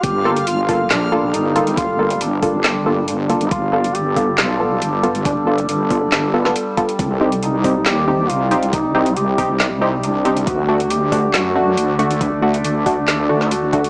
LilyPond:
<<
  \new Staff \with { instrumentName = "Duduk" } { \time 4/4 \key c \dorian \tempo 4 = 138 g'4 f'4 d'4 ees'4 | f'4 d'2 d'4 | f'4 g'4 f'4. r8 | d'4 d'2 r4 |
r4 ees'4 g'4 f'4 | ees'4 g'4. r8 d'4 | fis'4 g'4 fis'2 | d'4 d'2 fis'4 | }
  \new Staff \with { instrumentName = "Synth stab" } { \time 4/4 \key c \dorian r8 <bes f' a'>16 r8. <bes f' a'>8 r8 <bes f' a'>8 r8 <bes f' a'>16 r16 | r8 <bes f' a'>16 r8. <bes f' a'>8 r8 <bes f' a'>8 r8 <bes f' a'>16 r16 | r8 <b f' a'>16 r8. <b f' a'>8 r8 <b f' a'>8 r8 <b f' a'>16 r16 | r8 <b f' a'>16 r8. <b f' a'>8 r8 <b f' a'>16 <b f' a'>8 r16 <b f' a'>16 r16 |
r8 <c' ees' g'>16 r8. <c' ees' g'>8 r8 <c' ees' g'>8 r8 <c' ees' g'>16 r16 | r8 <c' ees' g'>16 r8. <c' ees' g'>8 r8 <c' ees' g'>8 r8 <c' ees' g'>16 r16 | r8 <a d' fis'>16 r8. <a d' fis'>8 r8 <a d' fis'>8 r8 <a d' fis'>16 r16 | r8 <a d' fis'>16 r8. <a d' fis'>8 r8 <a d' fis'>8 r8 <a d' fis'>16 r16 | }
  \new Staff \with { instrumentName = "Synth drone" } { \time 4/4 \key c \dorian << { <g a'>1~ | <g a'>1 | <g a'>1~ | <g a'>1 |
<c d''>1~ | <c d''>1 | <d d''>1~ | <d d''>1 | } \\ { d''1~ | d''1~ | d''1~ | d''1 |
r1 | r1 | a1~ | a1 | } >> }
  \new Staff \with { instrumentName = "Wobble bass" } { \clef bass \time 4/4 \key c \dorian g,,2 bes,,4 g,,4~ | g,,4 g,,2. | g,,2 b,,4 g,,4~ | g,,4 g,,4 g,,4 r4 |
c,2 ees,4 c,4~ | c,4 c,2. | d,2 fis,4 d,4~ | d,4 d,4. d,4. | }
  \new DrumStaff \with { instrumentName = "Drums" } \drummode { \time 4/4 <hh bd>8. hh16 hh8 <hho bd>8 <hc hh sn>4 hh8 hh16 hh16 | <hh bd>8. hh16 hh8 <hho bd>8 <hc hh sn>4 hh8 hh16 hh16 | <hh bd>8. hh16 hh8 <hho bd>8 <hc hh sn>4 hh8 hh16 hh16 | <hh bd>8. hh16 hh8 <hho bd>8 <hc hh sn>8. sn16 hh8 <hh bd>16 hh16 |
<hh bd>8. hh16 hh8 <hho bd>8 <hc hh sn>4 hh8 hh16 hh16 | <hh bd>8. hh16 hh8 <hho bd>8 <hc hh sn>4 hh8 hh16 hh16 | <hh bd>8. hh16 hh8 <hho bd>8 <hc hh sn>4 hh8 hh16 hh16 | <hh bd>8. hh16 hh8 <hho bd>8 <hc hh sn>8. sn16 hh8 <hh bd>16 hh16 | }
>>